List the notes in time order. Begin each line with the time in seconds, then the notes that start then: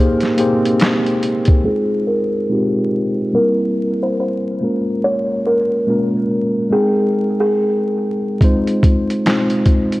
Already playing: G#2 G#3 A#3 C4 D#4 G4 G#4 A#4 C5
0.20 snare, closed hi-hat
0.37 A#3 D#4 G4 G#4 C5, closed hi-hat
0.66 closed hi-hat
0.80 snare, clap, closed hi-hat
1.06 closed hi-hat
1.23 closed hi-hat
1.45 kick, closed hi-hat
1.64 G#3 C4 D#4 F4 G#4 C5
2.07 A#4
2.49 G#3 C4 D#4 F4 G4
3.33 G3 A#3 C4 E4 A#4
4.03 C5
4.20 C5
4.60 G#3 A#3 C#4 F4 A#4
5.04 C#5
5.46 A#4
5.87 G#3 A#3 C#4 F4 A#4
6.71 G#3 C4 D#4 G#4 A#4 G5
7.40 G#4
8.41 G#3 C4 D#4 F4 C5, kick, closed hi-hat
8.67 closed hi-hat
8.83 kick, closed hi-hat
9.10 closed hi-hat
9.25 G#3 C4 D#4 F4 C5, snare, clap, closed hi-hat
9.50 closed hi-hat
9.66 kick, closed hi-hat
9.92 closed hi-hat